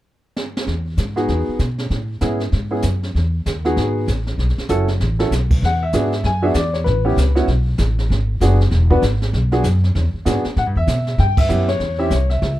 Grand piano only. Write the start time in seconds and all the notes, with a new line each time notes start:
1.16 B3 D#4 F#4 G#4
2.21 B3 C#4 E4 G#4
2.71 B3 C#4 E4 G#4
3.65 B3 D#4 F#4 G#4
4.69 C#4 E4 F#4 A4
5.19 C#4 E4 F#4 A4
5.65 F#5
5.83 E5
5.93 B3 D4 F#4 G#4
6.25 G#5
6.42 B3 D4 F#4 G#4 E5
6.55 D5
6.73 C#5
6.84 B4
7.05 B3 C#4 E4 G4
7.35 B3 C#4 E4 F#4
8.41 B3 D4 F#4 G#4
8.90 B3 D4 F#4 B4
9.52 B3 D4 F#4 G#4
10.25 B3 D4 F#4 G#4
10.58 F#5
10.77 E5
11.20 G5
11.38 E5
11.49 B3 C#4 E4 G4
11.69 C#5
11.99 C4 C#4 E4 G4 E5
12.10 C#5
12.30 E5